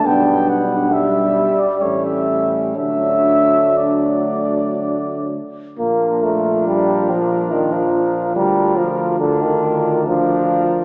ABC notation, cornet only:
X:1
M:3/4
L:1/16
Q:1/4=69
K:D
V:1 name="Cornet"
g2 f2 e3 d c e2 z | e4 d6 z2 | [K:Bb] B12 | B4 B4 B4 |]